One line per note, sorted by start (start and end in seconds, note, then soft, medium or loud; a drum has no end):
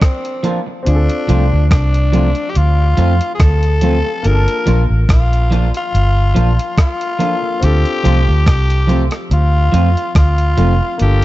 0.00 0.81 A#3 medium
0.00 0.57 C4 medium
0.00 0.82 D4 medium
0.00 0.83 F4 medium
0.00 0.84 A4 medium
0.00 kick loud
0.00 cross-stick loud
0.00 closed hi-hat medium
0.25 closed hi-hat soft
0.43 0.58 F3 medium
0.43 0.58 A#3 medium
0.43 0.59 D4 medium
0.43 0.59 F4 medium
0.43 closed hi-hat medium
0.67 muted clean electric guitar stroke soft
0.83 4.18 C4 medium
0.83 4.19 D4 medium
0.83 closed hi-hat medium
0.87 1.07 D2 medium
0.87 1.67 D4 loud
0.87 4.20 F4 medium
0.87 0.94 G#4 medium
0.95 4.24 A4 medium
1.09 closed hi-hat soft
1.28 1.50 C2 medium
1.28 1.43 F3 medium
1.28 1.43 A3 medium
1.28 1.44 C4 medium
1.28 1.44 F4 medium
1.28 closed hi-hat medium
1.53 1.70 D2 medium
1.71 2.32 C2 medium
1.71 2.51 D4 medium
1.71 kick loud
1.71 cross-stick loud
1.71 closed hi-hat medium
1.94 closed hi-hat soft
2.12 2.27 F3 medium
2.12 2.28 A3 medium
2.12 2.28 C4 medium
2.12 2.28 F4 medium
2.12 closed hi-hat medium
2.35 closed hi-hat soft
2.50 2.59 G4 medium
2.55 2.94 D2 medium
2.55 3.34 F4 loud
2.55 closed hi-hat medium
2.97 3.19 F2 medium
2.97 3.12 F3 medium
2.97 3.12 A3 medium
2.97 3.13 C4 medium
2.97 3.13 F4 medium
2.97 closed hi-hat medium
3.21 closed hi-hat soft
3.35 3.43 G#4 medium
3.40 4.01 D2 medium
3.40 4.28 A4 loud
3.40 kick loud
3.40 cross-stick loud
3.40 closed hi-hat medium
3.63 closed hi-hat soft
3.81 3.97 F3 medium
3.81 3.97 A3 medium
3.81 3.97 C4 medium
3.81 3.97 F4 medium
3.81 closed hi-hat medium
4.05 muted clean electric guitar stroke soft
4.23 4.46 G1 medium
4.23 7.15 A#3 medium
4.23 7.16 D4 medium
4.23 7.17 F4 medium
4.23 closed hi-hat medium
4.27 4.33 G#4 medium
4.27 4.84 A#4 loud
4.34 7.21 A5 medium
4.48 closed hi-hat soft
4.66 4.88 A#1 medium
4.66 4.81 F3 medium
4.66 4.81 A#3 medium
4.66 4.82 D4 medium
4.66 4.82 F4 medium
4.66 closed hi-hat medium
4.90 5.07 A1 medium
5.09 5.70 A#1 medium
5.09 5.72 F4 medium
5.09 kick loud
5.09 cross-stick loud
5.09 closed hi-hat medium
5.33 closed hi-hat soft
5.51 5.65 F3 medium
5.51 5.66 A#3 medium
5.51 5.66 D4 medium
5.51 5.67 F4 medium
5.51 closed hi-hat medium
5.74 6.75 F4 loud
5.74 closed hi-hat soft
5.94 6.32 G1 medium
5.94 closed hi-hat medium
6.35 6.57 A#1 medium
6.35 6.50 F3 medium
6.35 6.50 A#3 medium
6.35 6.51 D4 medium
6.35 6.51 F4 medium
6.35 closed hi-hat medium
6.59 closed hi-hat soft
6.78 7.66 F4 medium
6.78 kick loud
6.78 cross-stick loud
6.78 closed hi-hat medium
7.01 closed hi-hat soft
7.19 7.34 F3 medium
7.19 7.61 A#3 soft
7.19 7.34 A#3 medium
7.19 7.60 D4 soft
7.19 7.35 D4 medium
7.19 7.35 F4 medium
7.19 7.62 F4 soft
7.19 7.63 A4 medium
7.19 closed hi-hat medium
7.42 muted clean electric guitar stroke soft
7.60 7.83 D2 medium
7.60 10.95 C4 medium
7.60 10.95 D4 medium
7.60 10.97 F4 medium
7.60 closed hi-hat medium
7.65 8.48 G4 loud
7.65 10.98 A4 medium
7.85 closed hi-hat soft
8.03 8.26 C2 medium
8.03 8.19 F3 medium
8.03 8.19 A3 medium
8.03 8.19 C4 medium
8.03 8.19 F4 medium
8.03 closed hi-hat medium
8.29 8.45 D2 medium
8.46 9.02 G4 medium
8.46 kick loud
8.46 cross-stick loud
8.46 closed hi-hat medium
8.70 closed hi-hat soft
8.87 9.03 F3 medium
8.87 9.03 A3 medium
8.87 9.04 C4 medium
8.87 9.04 F4 medium
8.87 closed hi-hat medium
9.11 cross-stick medium
9.11 closed hi-hat soft
9.31 9.69 D2 loud
9.31 10.12 F4 loud
9.31 closed hi-hat medium
9.72 9.94 F2 medium
9.72 9.87 F3 medium
9.72 9.88 A3 medium
9.72 9.88 C4 medium
9.72 9.88 F4 medium
9.72 closed hi-hat medium
9.97 closed hi-hat soft
10.15 10.54 D2 medium
10.15 10.97 F4 loud
10.15 kick loud
10.15 cross-stick loud
10.15 closed hi-hat medium
10.38 closed hi-hat soft
10.57 10.79 F1 medium
10.57 10.72 F3 medium
10.57 10.72 A3 medium
10.57 10.73 C4 medium
10.57 10.73 F4 medium
10.57 closed hi-hat medium
10.81 muted clean electric guitar stroke soft
10.98 11.22 G1 loud
10.98 11.25 A#3 medium
10.98 11.25 D4 medium
10.98 11.25 F4 medium
10.98 closed hi-hat medium
11.02 11.25 G4 medium
11.02 11.25 A4 medium